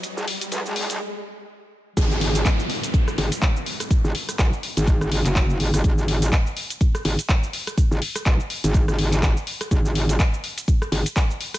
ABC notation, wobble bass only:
X:1
M:4/4
L:1/16
Q:"Swing 16ths" 1/4=124
K:G#m
V:1 name="Wobble bass" clef=bass
z G,,, z2 B,,, G,,,3 z8 | G,,,4 z6 G,,, z4 z | z G,,, z2 B,,, z2 G,,,3 G,,, F,,,3 G,,, G,,, | G,,,4 z6 G,,, z4 z |
z G,,, z2 B,,, z2 G,,,2 G,,,4 z3 | G,,,4 z6 G,,, z4 z |]